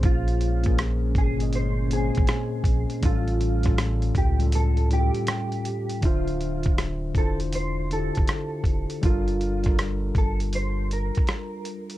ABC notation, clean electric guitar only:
X:1
M:4/4
L:1/16
Q:"Swing 16ths" 1/4=80
K:Am
V:1 name="Clean electric guitar"
F4 z2 _A z c2 A6 | F4 z2 G z A2 G6 | [K:Dm] F4 z2 A z c2 A6 | F4 z2 A z c2 B6 |]